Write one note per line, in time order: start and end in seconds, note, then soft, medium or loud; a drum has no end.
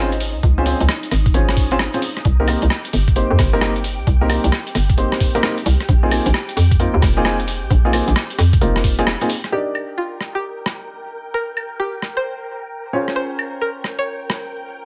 0.00 0.37 G#1 loud
0.00 2.26 D#4 medium
0.00 2.26 D#5 medium
0.12 closed hi-hat soft
0.20 open hi-hat medium
0.20 shaker medium
0.35 0.41 C#2 loud
0.35 shaker soft
0.43 0.74 C#2 medium
0.43 kick loud
0.43 closed hi-hat medium
0.43 shaker soft
0.58 0.64 C4 medium
0.58 0.64 C#4 medium
0.58 0.64 F4 medium
0.58 0.64 G#4 medium
0.58 0.64 C5 medium
0.58 shaker soft
0.66 0.82 C4 medium
0.66 0.82 C#4 medium
0.66 0.82 F4 medium
0.66 0.82 G#4 medium
0.66 0.82 C5 medium
0.66 open hi-hat medium
0.66 shaker medium
0.80 0.87 C#2 medium
0.80 closed hi-hat medium
0.80 shaker soft
0.88 cross-stick loud
0.88 shaker medium
1.03 closed hi-hat medium
1.03 shaker soft
1.11 1.34 G#1 medium
1.11 cross-stick soft
1.11 open hi-hat medium
1.11 shaker loud
1.26 kick loud
1.26 closed hi-hat medium
1.26 shaker soft
1.33 1.88 G#1 medium
1.33 1.68 C#4 medium
1.33 1.68 F4 medium
1.33 1.68 G#4 medium
1.33 1.68 C5 medium
1.33 1.68 C#5 medium
1.33 closed hi-hat medium
1.33 shaker medium
1.49 cross-stick medium
1.56 kick medium
1.56 open hi-hat medium
1.56 shaker medium
1.71 1.77 C4 loud
1.71 1.77 C#4 medium
1.71 1.77 F4 medium
1.71 1.77 G#4 medium
1.71 1.77 C5 loud
1.71 closed hi-hat soft
1.71 shaker soft
1.79 cross-stick loud
1.79 shaker soft
1.94 2.00 C4 medium
1.94 2.00 C#4 medium
1.94 2.00 F4 medium
1.94 2.00 G#4 medium
1.94 2.00 C5 medium
1.94 closed hi-hat soft
2.02 open hi-hat medium
2.02 shaker medium
2.16 cross-stick soft
2.16 closed hi-hat soft
2.16 shaker soft
2.25 2.56 C2 loud
2.25 9.54 G4 medium
2.25 9.51 G5 medium
2.25 kick loud
2.25 closed hi-hat medium
2.25 shaker soft
2.40 2.46 A#3 medium
2.40 2.46 C4 medium
2.40 2.46 D#4 medium
2.40 2.46 G4 medium
2.40 2.46 A#4 medium
2.47 2.64 A#3 medium
2.47 2.64 C4 medium
2.47 2.64 D#4 medium
2.47 2.64 G4 medium
2.47 2.64 A#4 medium
2.47 open hi-hat loud
2.47 claves medium
2.47 shaker medium
2.62 2.68 C2 medium
2.62 closed hi-hat medium
2.62 shaker soft
2.70 cross-stick loud
2.70 shaker medium
2.84 closed hi-hat medium
2.84 shaker soft
2.93 3.24 G1 medium
2.93 open hi-hat medium
2.93 shaker medium
3.08 kick loud
3.08 closed hi-hat medium
3.08 shaker soft
3.16 3.50 A#3 medium
3.16 3.50 C4 medium
3.16 3.50 D#4 medium
3.16 3.50 G4 medium
3.16 3.50 C5 medium
3.16 closed hi-hat medium
3.16 shaker soft
3.31 3.37 F2 loud
3.38 4.00 G1 loud
3.38 kick loud
3.38 cross-stick medium
3.38 open hi-hat loud
3.38 shaker medium
3.53 3.60 A#3 medium
3.53 3.60 C4 medium
3.53 3.60 D#4 medium
3.53 3.60 G4 medium
3.53 3.60 A#4 loud
3.53 shaker soft
3.61 3.72 A#3 loud
3.61 3.72 C4 medium
3.61 3.72 D#4 medium
3.61 3.72 G4 medium
3.61 3.72 A#4 loud
3.61 cross-stick loud
3.61 shaker medium
3.76 closed hi-hat medium
3.84 open hi-hat medium
3.84 shaker medium
3.99 4.05 C2 medium
3.99 shaker soft
4.07 4.38 C2 loud
4.07 kick loud
4.07 closed hi-hat medium
4.07 shaker soft
4.21 4.28 A#3 medium
4.21 4.28 C4 medium
4.21 4.28 D#4 medium
4.21 4.28 G4 medium
4.21 4.28 A#4 medium
4.29 4.45 A#3 medium
4.29 4.45 C4 medium
4.29 4.45 D#4 medium
4.29 4.45 G4 medium
4.29 4.45 A#4 medium
4.29 open hi-hat loud
4.29 claves medium
4.29 shaker medium
4.44 4.50 C2 medium
4.44 closed hi-hat medium
4.44 shaker soft
4.52 cross-stick loud
4.52 shaker soft
4.67 closed hi-hat medium
4.67 shaker soft
4.75 5.06 G1 medium
4.75 cross-stick soft
4.75 open hi-hat medium
4.75 shaker medium
4.89 kick loud
4.89 closed hi-hat medium
4.89 shaker soft
4.98 5.32 A#3 medium
4.98 5.32 C4 medium
4.98 5.32 D#4 medium
4.98 5.32 G4 medium
4.98 5.32 C5 medium
4.98 closed hi-hat medium
4.98 shaker soft
5.12 cross-stick medium
5.20 kick medium
5.20 open hi-hat loud
5.20 shaker medium
5.35 5.41 A#3 medium
5.35 5.41 C4 medium
5.35 5.41 D#4 medium
5.35 5.41 G4 medium
5.35 5.41 A#4 loud
5.35 closed hi-hat soft
5.35 shaker soft
5.43 5.54 A#3 loud
5.43 5.54 C4 medium
5.43 5.54 D#4 medium
5.43 5.54 G4 medium
5.43 5.54 A#4 loud
5.43 cross-stick loud
5.43 shaker soft
5.58 closed hi-hat medium
5.66 5.77 C2 medium
5.66 open hi-hat medium
5.66 shaker medium
5.80 cross-stick soft
5.80 closed hi-hat soft
5.80 shaker soft
5.89 6.20 A#1 loud
5.89 kick loud
5.89 closed hi-hat medium
5.89 shaker soft
6.03 6.09 A#3 medium
6.03 6.09 C4 medium
6.03 6.09 D#4 medium
6.03 6.09 F4 medium
6.03 6.09 G#4 medium
6.11 6.27 A#3 medium
6.11 6.27 C4 medium
6.11 6.27 D#4 medium
6.11 6.27 F4 medium
6.11 6.27 G#4 medium
6.11 open hi-hat loud
6.11 claves medium
6.11 shaker medium
6.26 6.32 A#1 medium
6.26 closed hi-hat medium
6.26 shaker soft
6.34 cross-stick loud
6.34 shaker soft
6.48 closed hi-hat medium
6.48 shaker soft
6.57 6.88 F2 medium
6.57 open hi-hat medium
6.57 shaker medium
6.71 kick loud
6.71 closed hi-hat medium
6.71 shaker soft
6.79 7.13 A#3 medium
6.79 7.13 C4 medium
6.79 7.13 D#4 medium
6.79 7.13 F4 medium
6.79 7.13 A#4 medium
6.79 closed hi-hat medium
6.79 shaker medium
6.94 7.00 D#2 loud
7.02 7.64 F1 loud
7.02 kick loud
7.02 cross-stick medium
7.02 open hi-hat loud
7.02 shaker medium
7.17 7.23 A#3 medium
7.17 7.23 C4 medium
7.17 7.23 D#4 medium
7.17 7.23 F4 medium
7.17 7.23 G#4 loud
7.17 shaker soft
7.25 7.36 A#3 loud
7.25 7.36 C4 medium
7.25 7.36 D#4 medium
7.25 7.36 F4 medium
7.25 7.36 G#4 loud
7.25 cross-stick loud
7.25 shaker soft
7.40 closed hi-hat medium
7.47 open hi-hat medium
7.47 shaker medium
7.62 7.68 A#1 loud
7.62 shaker soft
7.70 8.02 A#1 loud
7.70 kick loud
7.70 closed hi-hat medium
7.70 shaker medium
7.85 7.91 A#3 medium
7.85 7.91 C4 medium
7.85 7.91 D#4 medium
7.85 7.91 F4 medium
7.85 7.91 G#4 medium
7.85 shaker soft
7.93 8.09 A#3 medium
7.93 8.09 C4 medium
7.93 8.09 D#4 medium
7.93 8.09 F4 medium
7.93 8.09 G#4 medium
7.93 open hi-hat loud
7.93 claves medium
7.93 shaker medium
8.08 8.14 A#1 medium
8.08 closed hi-hat medium
8.08 shaker soft
8.16 cross-stick loud
8.16 shaker medium
8.30 closed hi-hat medium
8.30 shaker soft
8.39 8.61 F2 medium
8.39 cross-stick soft
8.39 open hi-hat medium
8.39 shaker medium
8.53 kick loud
8.53 closed hi-hat medium
8.53 shaker soft
8.61 9.15 F1 medium
8.61 8.95 A#3 medium
8.61 8.95 C4 medium
8.61 8.95 D#4 medium
8.61 8.95 F4 medium
8.61 8.95 A#4 medium
8.61 closed hi-hat medium
8.61 shaker soft
8.76 cross-stick medium
8.84 kick medium
8.84 open hi-hat loud
8.84 shaker medium
8.98 9.05 A#3 loud
8.98 9.05 C4 medium
8.98 9.05 D#4 medium
8.98 9.05 F4 medium
8.98 9.05 G#4 loud
8.98 closed hi-hat soft
8.98 shaker soft
9.07 cross-stick loud
9.07 shaker medium
9.21 9.27 A#3 medium
9.21 9.27 C4 medium
9.21 9.27 D#4 medium
9.21 9.27 F4 medium
9.21 9.27 G#4 medium
9.21 closed hi-hat medium
9.28 open hi-hat loud
9.28 shaker medium
9.44 cross-stick soft
9.44 closed hi-hat soft
9.44 shaker soft
9.52 12.91 D4 medium
9.52 12.91 D#4 medium
9.52 12.91 G4 medium
9.52 9.84 G4 medium
9.52 12.91 A#4 medium
9.52 14.85 A#4 medium
9.52 12.91 D5 medium
9.52 14.85 G5 medium
9.75 claves soft
9.98 10.20 F4 medium
10.21 cross-stick soft
10.35 10.57 G4 medium
10.66 cross-stick medium
11.34 11.66 A#4 medium
11.57 claves soft
11.80 12.02 G4 medium
12.02 cross-stick soft
12.17 12.39 C5 medium
12.93 14.85 C#4 medium
12.93 14.85 F4 medium
12.93 14.85 G#4 medium
12.93 14.85 C5 medium
12.93 14.85 C#5 medium
13.08 cross-stick soft
13.16 13.47 C5 medium
13.39 claves medium
13.62 13.84 A#4 medium
13.84 cross-stick soft
13.99 14.21 C#5 medium
14.30 cross-stick medium